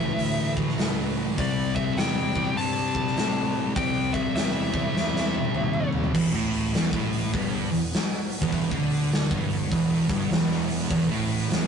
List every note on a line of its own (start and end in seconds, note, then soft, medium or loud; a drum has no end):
0.00 0.10 C#2 loud
0.00 0.16 A2 loud
0.00 1.36 A2 medium
0.00 0.19 E3 medium
0.00 1.38 E3 medium
0.00 0.18 A3 loud
0.00 1.33 A3 medium
0.00 1.35 A3 loud
0.00 1.33 E4 medium
0.00 1.33 B4 medium
0.00 0.53 E5 medium
0.18 0.70 D2 loud
0.18 1.36 A2 medium
0.18 1.38 E3 medium
0.18 1.37 A3 loud
0.18 open hi-hat medium
0.57 kick medium
0.69 snare soft
0.78 1.30 C#2 medium
0.78 snare loud
0.78 open hi-hat medium
1.37 1.90 C2 loud
1.37 2.55 C3 medium
1.37 2.57 G3 loud
1.37 6.09 C4 medium
1.37 2.58 C4 loud
1.37 3.73 G4 medium
1.37 6.10 D5 loud
1.37 1.74 D5 loud
1.37 kick loud
1.37 open hi-hat medium
1.76 1.98 E5 medium
1.76 kick medium
1.97 2.49 E2 medium
1.97 2.57 G5 loud
1.97 snare loud
1.97 open hi-hat medium
2.33 3.74 C3 medium
2.33 3.77 G3 medium
2.33 3.73 C4 medium
2.33 kick medium
2.55 3.08 G2 loud
2.55 3.73 C3 medium
2.55 3.76 G3 medium
2.55 3.75 C4 medium
2.55 3.72 A5 loud
2.55 open hi-hat medium
2.95 kick medium
3.07 snare soft
3.16 3.68 A2 loud
3.16 snare loud
3.16 open hi-hat medium
3.74 4.28 C2 loud
3.74 4.92 C3 medium
3.74 4.94 G3 medium
3.74 4.94 C4 loud
3.74 6.11 A4 medium
3.74 4.11 G5 loud
3.74 kick loud
3.74 open hi-hat medium
4.13 4.35 E5 medium
4.13 kick medium
4.35 4.87 E2 medium
4.35 5.88 E5 medium
4.35 snare loud
4.35 open hi-hat medium
4.72 6.14 C3 medium
4.72 6.13 G3 medium
4.72 6.12 C4 medium
4.72 kick medium
4.94 5.46 E2 loud
4.94 6.12 C3 medium
4.94 6.13 G3 medium
4.94 6.13 C4 medium
4.94 snare medium
5.16 snare medium
5.34 high tom medium
5.44 high tom medium
5.54 6.06 D#2 loud
5.54 mid tom medium
5.73 mid tom medium
5.93 floor tom loud
6.04 floor tom loud
6.13 6.31 E1 medium
6.13 6.31 E2 loud
6.13 11.67 E3 medium
6.13 11.67 B3 medium
6.13 11.67 F#4 loud
6.13 kick loud
6.13 crash loud
6.32 6.70 A1 medium
6.32 6.72 A2 loud
6.53 open hi-hat medium
6.73 6.91 E1 loud
6.73 6.91 E2 loud
6.73 snare loud
6.73 open hi-hat medium
6.92 7.30 A1 loud
6.92 7.32 A2 loud
6.92 kick loud
7.13 open hi-hat medium
7.33 7.68 G1 loud
7.33 7.69 G2 loud
7.33 kick loud
7.33 open hi-hat medium
7.71 7.91 E1 medium
7.71 7.88 E2 medium
7.71 open hi-hat medium
7.93 snare loud
7.93 open hi-hat medium
8.31 open hi-hat medium
8.41 8.69 E1 medium
8.41 8.70 E2 loud
8.41 kick loud
8.52 kick loud
8.52 open hi-hat medium
8.69 9.27 D2 medium
8.69 9.29 D3 loud
8.69 kick medium
8.90 open hi-hat medium
9.12 snare loud
9.12 open hi-hat medium
9.30 9.69 G1 loud
9.30 9.70 G2 loud
9.30 kick loud
9.50 open hi-hat medium
9.71 10.07 E1 loud
9.71 10.08 E2 loud
9.71 kick loud
9.71 open hi-hat medium
10.09 10.29 G1 loud
10.09 10.30 G2 medium
10.09 kick loud
10.09 open hi-hat medium
10.31 10.86 E1 loud
10.31 10.89 E2 loud
10.31 snare loud
10.31 open hi-hat medium
10.51 snare soft
10.69 open hi-hat medium
10.90 11.08 E1 loud
10.90 11.08 E2 loud
10.90 kick loud
10.90 open hi-hat medium
11.09 11.47 A1 loud
11.09 11.49 A2 loud
11.29 open hi-hat medium
11.49 11.67 E1 loud
11.49 11.67 E2 loud
11.49 snare loud
11.49 open hi-hat medium